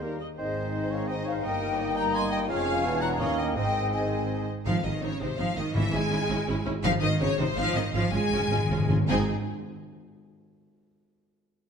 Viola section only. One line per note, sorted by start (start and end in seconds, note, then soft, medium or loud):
0.01 0.20 A#4 medium
0.19 0.27 D#5 medium
0.37 0.71 G#4 medium
0.72 1.08 C5 medium
1.09 1.44 C5 medium
1.44 1.79 A#4 medium
1.79 2.49 D#5 medium
2.49 3.18 C#5 medium
3.20 3.56 D#5 medium
3.56 4.46 C5 medium
4.65 4.73 C4 medium
4.65 4.73 D#4 medium
4.83 4.91 C4 medium
4.83 4.91 D#4 medium
5.01 5.09 C4 medium
5.01 5.09 D#4 medium
5.20 5.28 C4 medium
5.20 5.28 D#4 medium
5.38 5.45 C4 medium
5.38 5.46 D#4 medium
5.57 5.64 C4 medium
5.57 5.65 D#4 medium
5.75 5.82 C#4 medium
5.75 5.83 E4 medium
5.93 6.00 C#4 medium
5.93 6.01 E4 medium
6.11 6.18 C#4 medium
6.11 6.18 E4 medium
6.29 6.37 C#4 medium
6.29 6.37 E4 medium
6.48 6.55 C#4 medium
6.48 6.55 E4 medium
6.66 6.73 C#4 medium
6.66 6.73 E4 medium
6.84 6.91 C4 medium
6.84 6.91 D#4 loud
7.03 7.10 C4 medium
7.03 7.10 D#4 medium
7.20 7.27 C4 medium
7.20 7.28 D#4 medium
7.39 7.46 C4 medium
7.39 7.46 D#4 medium
7.58 7.65 C4 medium
7.58 7.65 D#4 medium
7.75 7.83 C4 medium
7.75 7.83 D#4 medium
7.94 8.02 C#4 medium
7.94 8.02 F4 medium
8.13 8.20 C#4 medium
8.13 8.21 F4 medium
8.32 8.40 C#4 medium
8.32 8.40 F4 medium
8.50 8.58 C#4 medium
8.50 8.58 F4 medium
8.70 8.78 C#4 medium
8.70 8.78 F4 medium
8.89 8.97 C#4 medium
8.89 8.97 F4 medium
9.09 9.30 C4 medium
9.09 9.30 D#4 medium